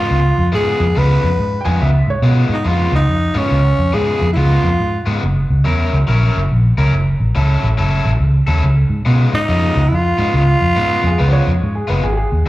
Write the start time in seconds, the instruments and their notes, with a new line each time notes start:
Already playing: overdriven electric guitar C#3 G#3 B3 F4, tenor saxophone F4
0.11 fingered electric bass C#2
0.38 fingered electric bass F2
0.52 fingered electric bass G#2, overdriven electric guitar C#3 G#3 B3 F4, tenor saxophone G#4
0.80 fingered electric bass F2
0.96 fingered electric bass C#2, overdriven electric guitar C#3 G#3 B3 F4, tenor saxophone B4
1.23 fingered electric bass F2
1.39 fingered electric bass G#2
1.61 upright piano G5
1.65 fingered electric bass F2, overdriven electric guitar C#3 G#3 B3 F4, upright piano G#5
1.81 fingered electric bass C#2, upright piano E5
2.07 fingered electric bass G#2, upright piano C#5
2.22 fingered electric bass B2, overdriven electric guitar C#3 G#3 B3 F4
2.49 fingered electric bass G#2
2.54 tenor saxophone D#4
2.65 fingered electric bass F2, overdriven electric guitar C#3 G#3 B3 F4, tenor saxophone F4
2.92 fingered electric bass C#2, tenor saxophone D#4
3.08 fingered electric bass F2
3.34 fingered electric bass G#2, overdriven electric guitar C#3 G#3 B3 F4, tenor saxophone C#4
3.51 fingered electric bass C#2
3.79 fingered electric bass F2
3.93 fingered electric bass G#2, overdriven electric guitar C#3 G#3 B3 F4, tenor saxophone G#4
4.21 fingered electric bass F2
4.33 fingered electric bass C#2, overdriven electric guitar C#3 G#3 B3, tenor saxophone E4
4.37 tenor saxophone F4, overdriven electric guitar F4
4.64 fingered electric bass F2
4.79 fingered electric bass G#2
5.06 fingered electric bass G#2, overdriven electric guitar C#3 G#3 B3 F4
5.23 fingered electric bass F#1
5.50 fingered electric bass C#2
5.64 fingered electric bass E2, overdriven electric guitar F#3 C#4 E4 A#4
5.93 fingered electric bass C#2
6.07 fingered electric bass A#1, overdriven electric guitar F#3 C#4 E4 A#4
6.36 fingered electric bass F#1
6.51 fingered electric bass A#1
6.78 fingered electric bass C#2, overdriven electric guitar F#3 C#4 E4 A#4
6.93 fingered electric bass F#1
7.20 fingered electric bass A1
7.35 fingered electric bass C#2, overdriven electric guitar F#3 C#4 E4 A4
7.63 fingered electric bass A1
7.77 fingered electric bass F#1, overdriven electric guitar F#3 C#4 E4 A4
8.05 fingered electric bass A1
8.20 fingered electric bass C#2
8.47 fingered electric bass D#2, overdriven electric guitar F#3 C#4 E4 A4
8.63 fingered electric bass C#2
8.89 fingered electric bass G#2
9.05 fingered electric bass B2, overdriven electric guitar C#3 G#3 B3 F4
9.33 fingered electric bass G#2, tenor saxophone D#4
9.48 fingered electric bass F2, overdriven electric guitar C#3 G#3 B3 F4
9.76 fingered electric bass C#2
9.88 fingered electric bass F2, tenor saxophone E4
9.94 tenor saxophone F4
10.18 fingered electric bass G#2, overdriven electric guitar C#3 G#3 B3 F4
10.34 fingered electric bass C#2, tenor saxophone F4
10.61 fingered electric bass F2
10.76 fingered electric bass G#2, overdriven electric guitar C#3 G#3 B3 F4
11.04 fingered electric bass F2, upright piano G#4
11.18 fingered electric bass C#2, overdriven electric guitar C#3 G#3 B3 F4, upright piano B4
11.28 upright piano C5
11.33 upright piano C#5
11.47 fingered electric bass F2
11.63 fingered electric bass G#2
11.75 upright piano G#4
11.87 fingered electric bass F#1, overdriven electric guitar C#3 G#3 B3 F4, upright piano B4
12.03 fingered electric bass G#1, upright piano G#4
12.13 upright piano G4
12.17 upright piano G#4
12.32 fingered electric bass D#2